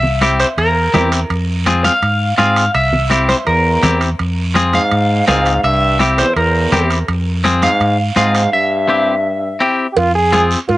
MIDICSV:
0, 0, Header, 1, 6, 480
1, 0, Start_track
1, 0, Key_signature, -4, "minor"
1, 0, Tempo, 361228
1, 1729, Time_signature, 4, 2, 24, 8
1, 14319, End_track
2, 0, Start_track
2, 0, Title_t, "Clean electric guitar"
2, 0, Program_c, 0, 27
2, 0, Note_on_c, 0, 76, 98
2, 254, Note_off_c, 0, 76, 0
2, 530, Note_on_c, 0, 72, 77
2, 596, Note_off_c, 0, 72, 0
2, 772, Note_on_c, 0, 70, 72
2, 1440, Note_off_c, 0, 70, 0
2, 2450, Note_on_c, 0, 77, 96
2, 3146, Note_off_c, 0, 77, 0
2, 3162, Note_on_c, 0, 77, 96
2, 3646, Note_off_c, 0, 77, 0
2, 3652, Note_on_c, 0, 76, 95
2, 4099, Note_off_c, 0, 76, 0
2, 4367, Note_on_c, 0, 72, 78
2, 4433, Note_off_c, 0, 72, 0
2, 4608, Note_on_c, 0, 70, 71
2, 5280, Note_off_c, 0, 70, 0
2, 6307, Note_on_c, 0, 77, 98
2, 7002, Note_off_c, 0, 77, 0
2, 7018, Note_on_c, 0, 77, 94
2, 7462, Note_off_c, 0, 77, 0
2, 7496, Note_on_c, 0, 76, 101
2, 7941, Note_off_c, 0, 76, 0
2, 8221, Note_on_c, 0, 72, 77
2, 8456, Note_off_c, 0, 72, 0
2, 8462, Note_on_c, 0, 70, 67
2, 9127, Note_off_c, 0, 70, 0
2, 10142, Note_on_c, 0, 77, 99
2, 10583, Note_off_c, 0, 77, 0
2, 10859, Note_on_c, 0, 77, 98
2, 11301, Note_off_c, 0, 77, 0
2, 11339, Note_on_c, 0, 76, 95
2, 12719, Note_off_c, 0, 76, 0
2, 14319, End_track
3, 0, Start_track
3, 0, Title_t, "Clean electric guitar"
3, 0, Program_c, 1, 27
3, 286, Note_on_c, 1, 60, 62
3, 293, Note_on_c, 1, 64, 60
3, 299, Note_on_c, 1, 67, 73
3, 622, Note_off_c, 1, 60, 0
3, 626, Note_off_c, 1, 64, 0
3, 629, Note_off_c, 1, 67, 0
3, 1246, Note_on_c, 1, 60, 70
3, 1252, Note_on_c, 1, 64, 65
3, 1258, Note_on_c, 1, 67, 76
3, 1583, Note_off_c, 1, 60, 0
3, 1586, Note_off_c, 1, 64, 0
3, 1589, Note_off_c, 1, 67, 0
3, 2208, Note_on_c, 1, 60, 77
3, 2217, Note_on_c, 1, 65, 78
3, 2226, Note_on_c, 1, 68, 77
3, 2545, Note_off_c, 1, 60, 0
3, 2550, Note_off_c, 1, 65, 0
3, 2552, Note_off_c, 1, 68, 0
3, 3160, Note_on_c, 1, 60, 68
3, 3173, Note_on_c, 1, 65, 53
3, 3174, Note_on_c, 1, 68, 77
3, 3503, Note_off_c, 1, 60, 0
3, 3505, Note_off_c, 1, 65, 0
3, 3509, Note_off_c, 1, 68, 0
3, 4124, Note_on_c, 1, 60, 66
3, 4133, Note_on_c, 1, 64, 59
3, 4141, Note_on_c, 1, 67, 63
3, 4464, Note_off_c, 1, 60, 0
3, 4470, Note_off_c, 1, 64, 0
3, 4471, Note_off_c, 1, 67, 0
3, 5090, Note_on_c, 1, 60, 73
3, 5099, Note_on_c, 1, 67, 74
3, 5102, Note_on_c, 1, 64, 58
3, 5429, Note_off_c, 1, 60, 0
3, 5431, Note_off_c, 1, 64, 0
3, 5433, Note_off_c, 1, 67, 0
3, 6046, Note_on_c, 1, 60, 75
3, 6054, Note_on_c, 1, 65, 67
3, 6055, Note_on_c, 1, 68, 85
3, 6387, Note_off_c, 1, 60, 0
3, 6388, Note_off_c, 1, 65, 0
3, 6391, Note_off_c, 1, 68, 0
3, 7010, Note_on_c, 1, 60, 70
3, 7022, Note_on_c, 1, 65, 57
3, 7022, Note_on_c, 1, 68, 75
3, 7349, Note_off_c, 1, 60, 0
3, 7351, Note_off_c, 1, 65, 0
3, 7354, Note_off_c, 1, 68, 0
3, 7962, Note_on_c, 1, 60, 65
3, 7977, Note_on_c, 1, 64, 56
3, 7977, Note_on_c, 1, 67, 76
3, 8306, Note_off_c, 1, 60, 0
3, 8308, Note_off_c, 1, 64, 0
3, 8311, Note_off_c, 1, 67, 0
3, 8932, Note_on_c, 1, 60, 67
3, 8937, Note_on_c, 1, 64, 61
3, 8946, Note_on_c, 1, 67, 69
3, 9268, Note_off_c, 1, 60, 0
3, 9272, Note_off_c, 1, 64, 0
3, 9273, Note_off_c, 1, 67, 0
3, 9887, Note_on_c, 1, 60, 85
3, 9899, Note_on_c, 1, 65, 61
3, 9899, Note_on_c, 1, 68, 86
3, 10226, Note_off_c, 1, 60, 0
3, 10229, Note_off_c, 1, 65, 0
3, 10231, Note_off_c, 1, 68, 0
3, 10844, Note_on_c, 1, 60, 68
3, 10849, Note_on_c, 1, 65, 62
3, 10857, Note_on_c, 1, 68, 64
3, 11183, Note_off_c, 1, 60, 0
3, 11187, Note_off_c, 1, 65, 0
3, 11188, Note_off_c, 1, 68, 0
3, 11806, Note_on_c, 1, 60, 65
3, 11817, Note_on_c, 1, 64, 55
3, 11821, Note_on_c, 1, 67, 69
3, 12144, Note_off_c, 1, 60, 0
3, 12146, Note_off_c, 1, 64, 0
3, 12151, Note_off_c, 1, 67, 0
3, 12761, Note_on_c, 1, 60, 83
3, 12766, Note_on_c, 1, 64, 74
3, 12777, Note_on_c, 1, 67, 88
3, 13100, Note_off_c, 1, 60, 0
3, 13104, Note_off_c, 1, 64, 0
3, 13105, Note_off_c, 1, 67, 0
3, 13717, Note_on_c, 1, 60, 66
3, 13720, Note_on_c, 1, 65, 66
3, 13732, Note_on_c, 1, 68, 74
3, 14057, Note_off_c, 1, 60, 0
3, 14061, Note_off_c, 1, 65, 0
3, 14063, Note_off_c, 1, 68, 0
3, 14319, End_track
4, 0, Start_track
4, 0, Title_t, "Trombone"
4, 0, Program_c, 2, 57
4, 4597, Note_on_c, 2, 40, 61
4, 5274, Note_off_c, 2, 40, 0
4, 6298, Note_on_c, 2, 44, 83
4, 6966, Note_off_c, 2, 44, 0
4, 7022, Note_on_c, 2, 44, 84
4, 7465, Note_off_c, 2, 44, 0
4, 7488, Note_on_c, 2, 43, 83
4, 7937, Note_off_c, 2, 43, 0
4, 8211, Note_on_c, 2, 40, 68
4, 8435, Note_off_c, 2, 40, 0
4, 8452, Note_on_c, 2, 40, 67
4, 9122, Note_off_c, 2, 40, 0
4, 10149, Note_on_c, 2, 44, 90
4, 10587, Note_off_c, 2, 44, 0
4, 10859, Note_on_c, 2, 44, 84
4, 11301, Note_off_c, 2, 44, 0
4, 11335, Note_on_c, 2, 43, 82
4, 12717, Note_off_c, 2, 43, 0
4, 13191, Note_on_c, 2, 67, 78
4, 13246, Note_on_c, 2, 65, 101
4, 13266, Note_off_c, 2, 67, 0
4, 13478, Note_off_c, 2, 65, 0
4, 13486, Note_on_c, 2, 68, 104
4, 13932, Note_off_c, 2, 68, 0
4, 14203, Note_on_c, 2, 65, 106
4, 14319, Note_off_c, 2, 65, 0
4, 14319, End_track
5, 0, Start_track
5, 0, Title_t, "Fingered electric bass"
5, 0, Program_c, 3, 33
5, 0, Note_on_c, 3, 36, 103
5, 570, Note_off_c, 3, 36, 0
5, 764, Note_on_c, 3, 40, 86
5, 1150, Note_off_c, 3, 40, 0
5, 1243, Note_on_c, 3, 40, 94
5, 1629, Note_off_c, 3, 40, 0
5, 1728, Note_on_c, 3, 41, 102
5, 2498, Note_off_c, 3, 41, 0
5, 2689, Note_on_c, 3, 44, 87
5, 3074, Note_off_c, 3, 44, 0
5, 3167, Note_on_c, 3, 44, 94
5, 3553, Note_off_c, 3, 44, 0
5, 3650, Note_on_c, 3, 36, 99
5, 4419, Note_off_c, 3, 36, 0
5, 4612, Note_on_c, 3, 40, 89
5, 4996, Note_off_c, 3, 40, 0
5, 5094, Note_on_c, 3, 40, 96
5, 5478, Note_off_c, 3, 40, 0
5, 5577, Note_on_c, 3, 41, 95
5, 6344, Note_off_c, 3, 41, 0
5, 6533, Note_on_c, 3, 44, 84
5, 6917, Note_off_c, 3, 44, 0
5, 7019, Note_on_c, 3, 37, 94
5, 7401, Note_off_c, 3, 37, 0
5, 7489, Note_on_c, 3, 36, 94
5, 8259, Note_off_c, 3, 36, 0
5, 8454, Note_on_c, 3, 40, 85
5, 8838, Note_off_c, 3, 40, 0
5, 8933, Note_on_c, 3, 40, 97
5, 9317, Note_off_c, 3, 40, 0
5, 9413, Note_on_c, 3, 41, 99
5, 10180, Note_off_c, 3, 41, 0
5, 10371, Note_on_c, 3, 44, 88
5, 10755, Note_off_c, 3, 44, 0
5, 10852, Note_on_c, 3, 44, 95
5, 11235, Note_off_c, 3, 44, 0
5, 13246, Note_on_c, 3, 41, 94
5, 14013, Note_off_c, 3, 41, 0
5, 14209, Note_on_c, 3, 44, 103
5, 14319, Note_off_c, 3, 44, 0
5, 14319, End_track
6, 0, Start_track
6, 0, Title_t, "Drums"
6, 44, Note_on_c, 9, 64, 70
6, 177, Note_off_c, 9, 64, 0
6, 284, Note_on_c, 9, 63, 79
6, 287, Note_on_c, 9, 73, 67
6, 288, Note_on_c, 9, 65, 67
6, 417, Note_off_c, 9, 63, 0
6, 420, Note_off_c, 9, 73, 0
6, 421, Note_off_c, 9, 65, 0
6, 527, Note_on_c, 9, 73, 68
6, 530, Note_on_c, 9, 65, 68
6, 660, Note_off_c, 9, 73, 0
6, 663, Note_off_c, 9, 65, 0
6, 768, Note_on_c, 9, 74, 65
6, 772, Note_on_c, 9, 65, 66
6, 901, Note_off_c, 9, 74, 0
6, 904, Note_off_c, 9, 65, 0
6, 1246, Note_on_c, 9, 73, 64
6, 1251, Note_on_c, 9, 63, 75
6, 1251, Note_on_c, 9, 64, 77
6, 1251, Note_on_c, 9, 65, 66
6, 1251, Note_on_c, 9, 66, 67
6, 1378, Note_off_c, 9, 73, 0
6, 1384, Note_off_c, 9, 63, 0
6, 1384, Note_off_c, 9, 64, 0
6, 1384, Note_off_c, 9, 65, 0
6, 1384, Note_off_c, 9, 66, 0
6, 1487, Note_on_c, 9, 73, 68
6, 1488, Note_on_c, 9, 65, 68
6, 1620, Note_off_c, 9, 73, 0
6, 1621, Note_off_c, 9, 65, 0
6, 1730, Note_on_c, 9, 65, 67
6, 1733, Note_on_c, 9, 74, 64
6, 1863, Note_off_c, 9, 65, 0
6, 1866, Note_off_c, 9, 74, 0
6, 2210, Note_on_c, 9, 73, 66
6, 2212, Note_on_c, 9, 65, 66
6, 2214, Note_on_c, 9, 63, 83
6, 2343, Note_off_c, 9, 73, 0
6, 2345, Note_off_c, 9, 65, 0
6, 2347, Note_off_c, 9, 63, 0
6, 2451, Note_on_c, 9, 65, 67
6, 2452, Note_on_c, 9, 73, 67
6, 2456, Note_on_c, 9, 63, 69
6, 2584, Note_off_c, 9, 65, 0
6, 2585, Note_off_c, 9, 73, 0
6, 2589, Note_off_c, 9, 63, 0
6, 2686, Note_on_c, 9, 74, 68
6, 2692, Note_on_c, 9, 65, 66
6, 2819, Note_off_c, 9, 74, 0
6, 2825, Note_off_c, 9, 65, 0
6, 3167, Note_on_c, 9, 65, 70
6, 3168, Note_on_c, 9, 73, 66
6, 3172, Note_on_c, 9, 63, 77
6, 3300, Note_off_c, 9, 65, 0
6, 3301, Note_off_c, 9, 73, 0
6, 3305, Note_off_c, 9, 63, 0
6, 3406, Note_on_c, 9, 65, 68
6, 3408, Note_on_c, 9, 73, 65
6, 3539, Note_off_c, 9, 65, 0
6, 3541, Note_off_c, 9, 73, 0
6, 3647, Note_on_c, 9, 74, 68
6, 3648, Note_on_c, 9, 65, 67
6, 3780, Note_off_c, 9, 74, 0
6, 3781, Note_off_c, 9, 65, 0
6, 3891, Note_on_c, 9, 64, 67
6, 4024, Note_off_c, 9, 64, 0
6, 4130, Note_on_c, 9, 63, 79
6, 4130, Note_on_c, 9, 65, 66
6, 4131, Note_on_c, 9, 73, 64
6, 4263, Note_off_c, 9, 63, 0
6, 4263, Note_off_c, 9, 65, 0
6, 4264, Note_off_c, 9, 73, 0
6, 4370, Note_on_c, 9, 65, 68
6, 4371, Note_on_c, 9, 73, 65
6, 4374, Note_on_c, 9, 63, 66
6, 4503, Note_off_c, 9, 65, 0
6, 4504, Note_off_c, 9, 73, 0
6, 4507, Note_off_c, 9, 63, 0
6, 4606, Note_on_c, 9, 65, 64
6, 4613, Note_on_c, 9, 74, 66
6, 4739, Note_off_c, 9, 65, 0
6, 4746, Note_off_c, 9, 74, 0
6, 5084, Note_on_c, 9, 65, 63
6, 5092, Note_on_c, 9, 63, 74
6, 5092, Note_on_c, 9, 64, 76
6, 5092, Note_on_c, 9, 73, 66
6, 5217, Note_off_c, 9, 65, 0
6, 5225, Note_off_c, 9, 63, 0
6, 5225, Note_off_c, 9, 64, 0
6, 5225, Note_off_c, 9, 73, 0
6, 5327, Note_on_c, 9, 65, 70
6, 5332, Note_on_c, 9, 73, 66
6, 5460, Note_off_c, 9, 65, 0
6, 5464, Note_off_c, 9, 73, 0
6, 5571, Note_on_c, 9, 65, 66
6, 5574, Note_on_c, 9, 74, 60
6, 5704, Note_off_c, 9, 65, 0
6, 5707, Note_off_c, 9, 74, 0
6, 6051, Note_on_c, 9, 63, 77
6, 6051, Note_on_c, 9, 65, 69
6, 6056, Note_on_c, 9, 73, 67
6, 6184, Note_off_c, 9, 63, 0
6, 6184, Note_off_c, 9, 65, 0
6, 6189, Note_off_c, 9, 73, 0
6, 6290, Note_on_c, 9, 65, 64
6, 6295, Note_on_c, 9, 73, 67
6, 6296, Note_on_c, 9, 63, 68
6, 6422, Note_off_c, 9, 65, 0
6, 6428, Note_off_c, 9, 73, 0
6, 6429, Note_off_c, 9, 63, 0
6, 6530, Note_on_c, 9, 65, 67
6, 6531, Note_on_c, 9, 74, 65
6, 6663, Note_off_c, 9, 65, 0
6, 6664, Note_off_c, 9, 74, 0
6, 7011, Note_on_c, 9, 65, 68
6, 7011, Note_on_c, 9, 66, 71
6, 7012, Note_on_c, 9, 73, 67
6, 7016, Note_on_c, 9, 63, 75
6, 7144, Note_off_c, 9, 65, 0
6, 7144, Note_off_c, 9, 66, 0
6, 7144, Note_off_c, 9, 73, 0
6, 7149, Note_off_c, 9, 63, 0
6, 7249, Note_on_c, 9, 73, 68
6, 7256, Note_on_c, 9, 65, 67
6, 7382, Note_off_c, 9, 73, 0
6, 7389, Note_off_c, 9, 65, 0
6, 7489, Note_on_c, 9, 74, 64
6, 7497, Note_on_c, 9, 65, 65
6, 7622, Note_off_c, 9, 74, 0
6, 7630, Note_off_c, 9, 65, 0
6, 7973, Note_on_c, 9, 73, 66
6, 7975, Note_on_c, 9, 63, 79
6, 7977, Note_on_c, 9, 65, 68
6, 8106, Note_off_c, 9, 73, 0
6, 8108, Note_off_c, 9, 63, 0
6, 8110, Note_off_c, 9, 65, 0
6, 8215, Note_on_c, 9, 73, 65
6, 8218, Note_on_c, 9, 65, 66
6, 8348, Note_off_c, 9, 73, 0
6, 8351, Note_off_c, 9, 65, 0
6, 8457, Note_on_c, 9, 74, 62
6, 8458, Note_on_c, 9, 65, 62
6, 8590, Note_off_c, 9, 74, 0
6, 8591, Note_off_c, 9, 65, 0
6, 8931, Note_on_c, 9, 65, 66
6, 8935, Note_on_c, 9, 63, 76
6, 8935, Note_on_c, 9, 64, 72
6, 8941, Note_on_c, 9, 73, 66
6, 9064, Note_off_c, 9, 65, 0
6, 9068, Note_off_c, 9, 63, 0
6, 9068, Note_off_c, 9, 64, 0
6, 9074, Note_off_c, 9, 73, 0
6, 9174, Note_on_c, 9, 65, 69
6, 9177, Note_on_c, 9, 73, 65
6, 9307, Note_off_c, 9, 65, 0
6, 9310, Note_off_c, 9, 73, 0
6, 9413, Note_on_c, 9, 65, 63
6, 9419, Note_on_c, 9, 74, 62
6, 9546, Note_off_c, 9, 65, 0
6, 9552, Note_off_c, 9, 74, 0
6, 9890, Note_on_c, 9, 63, 81
6, 9893, Note_on_c, 9, 65, 69
6, 9896, Note_on_c, 9, 73, 66
6, 10023, Note_off_c, 9, 63, 0
6, 10026, Note_off_c, 9, 65, 0
6, 10029, Note_off_c, 9, 73, 0
6, 10131, Note_on_c, 9, 73, 71
6, 10135, Note_on_c, 9, 65, 70
6, 10136, Note_on_c, 9, 63, 70
6, 10263, Note_off_c, 9, 73, 0
6, 10268, Note_off_c, 9, 63, 0
6, 10268, Note_off_c, 9, 65, 0
6, 10369, Note_on_c, 9, 74, 69
6, 10377, Note_on_c, 9, 65, 65
6, 10502, Note_off_c, 9, 74, 0
6, 10510, Note_off_c, 9, 65, 0
6, 10846, Note_on_c, 9, 63, 74
6, 10851, Note_on_c, 9, 73, 66
6, 10854, Note_on_c, 9, 65, 66
6, 10979, Note_off_c, 9, 63, 0
6, 10983, Note_off_c, 9, 73, 0
6, 10987, Note_off_c, 9, 65, 0
6, 11091, Note_on_c, 9, 73, 70
6, 11093, Note_on_c, 9, 65, 66
6, 11224, Note_off_c, 9, 73, 0
6, 11226, Note_off_c, 9, 65, 0
6, 13243, Note_on_c, 9, 56, 104
6, 13247, Note_on_c, 9, 74, 66
6, 13253, Note_on_c, 9, 63, 36
6, 13375, Note_off_c, 9, 56, 0
6, 13380, Note_off_c, 9, 74, 0
6, 13386, Note_off_c, 9, 63, 0
6, 13726, Note_on_c, 9, 56, 69
6, 13727, Note_on_c, 9, 73, 67
6, 13730, Note_on_c, 9, 63, 84
6, 13858, Note_off_c, 9, 56, 0
6, 13860, Note_off_c, 9, 73, 0
6, 13863, Note_off_c, 9, 63, 0
6, 13963, Note_on_c, 9, 73, 67
6, 14096, Note_off_c, 9, 73, 0
6, 14201, Note_on_c, 9, 56, 77
6, 14207, Note_on_c, 9, 74, 66
6, 14209, Note_on_c, 9, 63, 32
6, 14319, Note_off_c, 9, 56, 0
6, 14319, Note_off_c, 9, 63, 0
6, 14319, Note_off_c, 9, 74, 0
6, 14319, End_track
0, 0, End_of_file